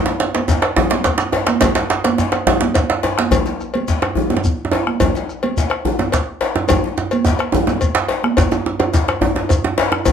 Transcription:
0.06 djembe slap
0.20 bombo rim, djembe slap, high conga
0.35 cowbell, djembe slap, high conga
0.48 bombo low, djembe slap, djembe tone, high conga, shekere
0.62 bombo rim, cowbell, djembe slap
0.76 djembe slap, djembe tone, high conga, djembe bass, low conga
0.90 djembe slap, high conga
1.04 bombo low, cowbell, djembe slap, shekere
1.18 bombo rim, djembe slap, high conga, shekere
1.32 bombo rim, cowbell, djembe slap, djembe tone
1.47 bombo rim, djembe slap, high conga
1.61 bombo rim, bombo low, cowbell, djembe slap, djembe tone, djembe bass, low conga, shekere
1.75 bombo rim, djembe slap, shekere
1.90 bombo rim, djembe slap, shekere
2.04 cowbell, djembe slap, high conga
2.18 djembe slap, djembe tone, shekere
2.32 bombo rim, cowbell, djembe slap
2.47 bombo rim, djembe slap, djembe tone, djembe bass, low conga
2.61 djembe slap, high conga
2.74 bombo rim, bombo low, cowbell, djembe slap, shekere
2.90 djembe slap
3.03 cowbell, djembe slap, djembe tone
3.18 bombo rim, djembe slap, high conga
3.31 bombo rim, bombo low, cowbell, djembe slap, djembe tone, djembe bass, low conga, shekere
3.46 bombo rim, djembe slap, shekere
3.59 bombo rim, djembe slap, shekere
3.74 cowbell, high conga
3.88 bombo low, djembe slap, shekere
4.02 bombo rim, cowbell, djembe tone
4.15 bombo rim, djembe tone, djembe bass, low conga
4.30 djembe slap, djembe tone, high conga
4.37 djembe tone
4.44 bombo rim, bombo low, shekere
4.65 djembe tone
4.71 cowbell, djembe slap, djembe tone
4.87 bombo rim, high conga
5.00 bombo rim, bombo low, cowbell, djembe slap, djembe tone, djembe bass, low conga, shekere
5.15 bombo rim, djembe slap, shekere
5.29 bombo rim, djembe slap, shekere
5.43 cowbell, high conga
5.57 bombo low, djembe slap, shekere
5.70 bombo rim, cowbell
5.85 bombo rim, djembe tone, djembe bass, low conga
5.99 djembe slap, djembe tone, high conga
6.12 bombo rim, bombo low, cowbell, djembe slap, shekere
6.41 cowbell, djembe slap
6.56 djembe tone
6.69 bombo rim, bombo low, cowbell, djembe slap, djembe tone, high conga, djembe bass, low conga, shekere
6.84 djembe slap
6.97 djembe slap, djembe tone, shekere
7.11 bombo rim, cowbell, djembe slap, high conga, shekere
7.25 bombo low, djembe slap, djembe tone, shekere
7.39 bombo rim, cowbell, djembe slap
7.52 bombo rim, djembe tone, djembe bass, low conga, shekere
7.67 djembe slap, djembe tone, high conga, shekere
7.81 bombo low, cowbell, djembe slap, high conga, shekere
7.95 bombo rim, djembe slap, shekere
8.08 cowbell, djembe slap
8.24 bombo rim, high conga
8.37 bombo rim, bombo low, cowbell, djembe slap, djembe tone, djembe bass, shekere
8.52 bombo rim, djembe slap, djembe tone, shekere
8.66 bombo rim, djembe slap, djembe tone
8.80 cowbell, djembe tone
8.94 bombo low, djembe slap, djembe tone, shekere
9.08 bombo rim, cowbell, djembe tone
9.21 bombo rim, djembe tone, djembe bass
9.36 djembe slap, djembe tone
9.49 bombo rim, bombo low, cowbell, djembe tone, shekere
9.64 djembe tone
9.78 cowbell, djembe slap, djembe tone
9.92 bombo rim, djembe tone
10.05 bombo rim, bombo low, cowbell, djembe slap, djembe tone, djembe bass, shekere

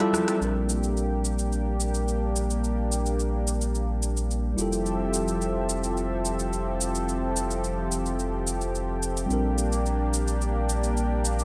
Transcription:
Already playing: F3 G3 C4 G4 A4 E5
0.00 E4 F4 A4, cross-stick, closed hi-hat
0.13 cross-stick, high conga, cabasa
0.28 cross-stick, closed hi-hat, cabasa
0.37 A#1 G3 A#3 C4 D4 G4
0.42 D4 A#4, cabasa
0.69 cabasa
0.83 cabasa
0.97 cabasa
1.25 cabasa
1.39 cabasa
1.52 cabasa
1.80 cabasa
1.94 cabasa
2.08 cabasa
2.36 cabasa
2.50 cabasa
2.64 cabasa
2.92 cabasa
3.06 cabasa
3.20 cabasa
3.47 cabasa
3.61 cabasa
3.75 cabasa
4.03 cabasa
4.17 cabasa
4.31 cabasa
4.54 F1 F3 G3 C4 E4 G4 A4 E5
4.58 F4 A4, cabasa
4.73 cabasa
4.86 cabasa
5.14 cabasa
5.28 cabasa
5.42 cabasa
5.69 cabasa
5.84 cabasa
5.97 cabasa
6.25 cabasa
6.39 cabasa
6.53 cabasa
6.81 cabasa
6.95 cabasa
7.09 cabasa
7.36 cabasa
7.51 cabasa
7.64 cabasa
7.92 cabasa
8.06 cabasa
8.19 cabasa
8.47 cabasa
8.61 cabasa
8.75 cabasa
9.03 cabasa
9.17 cabasa
9.26 A#1 G3 A#3 C4 D4
9.30 D4 A#4, cabasa
9.58 cabasa
9.72 cabasa
9.86 cabasa
10.14 cabasa
10.28 cabasa
10.41 cabasa
10.69 cabasa
10.84 cabasa
10.97 cabasa
11.25 cabasa
11.39 cabasa

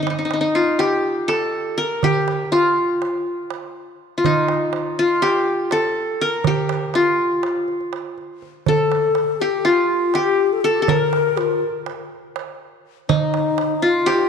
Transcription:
0.03 D#4
0.07 D#4, darbuka tek
0.19 D#4
0.25 D#4
0.31 D#4, darbuka tek
0.41 D#4
0.55 F4
0.79 G4, darbuka tek
1.28 A4, darbuka tek
1.78 A#4
2.03 G4, darbuka dum
2.28 darbuka tek
2.52 F4, darbuka tek
3.02 darbuka tek
3.50 darbuka tek
4.18 F4
4.24 D#4, darbuka dum
4.48 darbuka tek
4.73 darbuka tek
4.99 F4
5.22 G4, darbuka tek
5.71 A4, darbuka tek
6.21 A#4
6.44 G4, darbuka dum
6.69 darbuka tek
6.94 F4, darbuka tek
7.18 darbuka ka
7.43 darbuka tek
7.68 darbuka ka
7.81 darbuka ka
7.93 darbuka tek
8.18 darbuka ka
8.42 darbuka ka
8.66 A4, darbuka dum
8.92 darbuka tek
9.15 darbuka tek
9.41 G4
9.65 F4, darbuka tek
10.14 G4, darbuka tek
10.53 A4
10.61 G4 A4
10.71 F4
10.79 G4 A4
10.88 A#4, darbuka dum
11.13 darbuka tek
11.37 F4, darbuka tek
11.86 darbuka tek
12.36 darbuka tek
13.09 D#4, darbuka dum
13.34 darbuka tek
13.58 darbuka tek
13.82 F4
14.06 G4, darbuka tek
14.14 F4
14.21 G4

